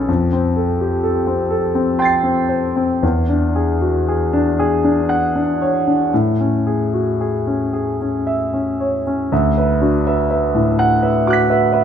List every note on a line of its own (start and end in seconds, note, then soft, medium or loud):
0.00 0.10 C#4 soft
0.00 0.10 A4 soft
0.08 2.98 F2 soft
0.32 0.71 C4 soft
0.56 0.95 A4 soft
0.81 1.04 G4 soft
1.03 1.42 A4 soft
1.27 1.65 C4 soft
1.50 1.90 A4 soft
1.75 2.14 C4 soft
1.99 2.39 G5 soft
1.99 2.97 C6 soft
1.99 2.99 A6 soft
2.05 3.00 C7 soft
2.23 2.64 C4 soft
2.49 2.91 C5 soft
2.76 3.02 C4 soft
3.03 6.07 E2 soft
3.29 3.71 D4 soft
3.56 3.97 G#4 soft
3.81 4.07 F#4 soft
4.08 4.48 G#4 soft
4.33 4.73 D4 soft
4.59 4.99 G#4 medium
4.84 5.24 D4 soft
5.09 5.49 F#5 medium
5.36 5.75 D4 soft
5.61 6.01 C#5 soft
5.87 6.12 D4 soft
6.14 9.29 A2 soft
6.41 6.81 C#4 soft
6.67 7.07 G#4 soft
6.94 7.18 F#4 soft
7.21 7.61 G#4 soft
7.47 7.88 C#4 soft
7.73 8.15 G#4 soft
8.01 8.43 C#4 soft
8.27 8.69 E5 soft
8.53 8.96 C#4 soft
8.80 9.22 C#5 soft
9.07 9.32 C#4 soft
9.32 11.84 D2 soft
9.32 9.57 E5 soft
9.58 9.79 B4 soft
9.58 9.80 E5 soft
9.81 10.58 D4 soft
9.81 10.20 F#4 soft
10.06 10.27 B4 soft
10.06 10.28 E5 soft
10.30 10.52 B4 soft
10.30 10.52 E5 soft
10.55 10.93 A2 soft
10.79 11.17 F#5 medium
11.03 11.24 B4 soft
11.03 11.24 E5 soft
11.27 11.65 F#4 soft
11.27 11.84 D6 soft
11.27 11.84 F#6 soft
11.33 11.84 B6 soft
11.50 11.71 B4 soft
11.50 11.71 E5 soft
11.73 11.84 B4 soft
11.73 11.84 E5 soft